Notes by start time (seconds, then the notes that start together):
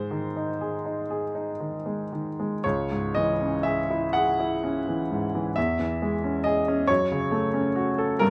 Already playing: G#2 G#3 C5
0.11 D#3
0.36 D#4
0.61 G#4
0.85 D#4
1.10 G#4
1.35 D#4
1.60 D#3
1.86 G#3
2.12 D#3
2.40 G#3
2.64 C#2 C#5
2.92 G#2
3.15 E3 D#5
3.41 C#4
3.63 G#4 E5
3.90 E4
4.13 G#4 F#5
4.40 E4
4.64 C#4
4.88 E3
5.11 G#2
5.35 E3
5.56 E2 E5
5.79 E3
6.02 G#3
6.24 C#4
6.44 G#4 D#5
6.68 C#4
6.87 F#2 C#5
7.12 C#3
7.31 A3
7.54 C#4
7.76 F#4
7.98 A4
8.19 G2 A#4